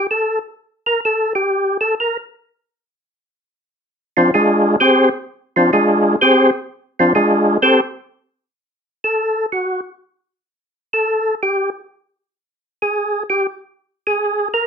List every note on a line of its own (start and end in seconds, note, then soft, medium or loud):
0.11 0.39 A4 medium
0.86 1.00 A#4 loud
1.05 1.33 A4 medium
1.35 1.77 G4 medium
1.81 1.95 A4 medium
2.00 2.17 A#4 medium
4.17 4.31 F3 medium
4.17 4.31 C4 medium
4.17 4.31 D4 medium
4.17 4.30 F4 medium
4.34 4.76 G#3 medium
4.34 4.76 D4 medium
4.34 4.76 F4 medium
4.34 4.76 G#4 medium
4.80 5.10 C4 medium
4.80 5.09 G4 medium
4.80 5.09 G#4 medium
4.80 5.09 C5 medium
5.56 5.71 F3 medium
5.56 5.71 C4 medium
5.56 5.71 D4 medium
5.56 5.71 F4 medium
5.73 6.16 G#3 medium
5.73 6.16 D4 medium
5.73 6.16 F4 medium
5.73 6.16 G#4 medium
6.21 6.51 C4 medium
6.21 6.51 G4 medium
6.21 6.50 G#4 medium
6.21 6.50 C5 medium
6.99 7.13 F3 soft
6.99 7.13 C4 soft
6.99 7.13 D4 medium
6.99 7.13 F4 medium
7.15 7.58 G#3 medium
7.15 7.58 D4 medium
7.15 7.57 F4 medium
7.15 7.57 G#4 medium
7.62 7.80 C4 medium
7.62 7.81 G4 medium
7.62 7.81 A4 medium
7.62 7.80 C5 medium
9.04 9.46 A4 medium
9.52 9.81 F#4 medium
10.93 11.35 A4 medium
11.43 11.70 G4 medium
12.82 13.23 G#4 medium
13.30 13.47 G4 medium
14.07 14.48 G#4 loud
14.54 14.67 A#4 medium